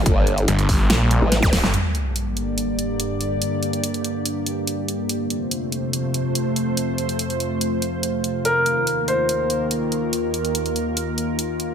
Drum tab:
HH |x-xxxxo-x-x-x-o-|x-x-x-x-x-x-x-x-|x-xxxxx-x-x-x-x-|x-x-x-x-x-x-x-x-|
SD |--------o---oooo|----------------|----------------|----------------|
BD |o-----o------oo-|----------------|----------------|----------------|

HH |x-xxxxx-x-x-x-x-|x-x-x-x-x-x-x-x-|x-xxxxx-x-x-x-x-|
SD |----------------|----------------|----------------|
BD |----------------|----------------|----------------|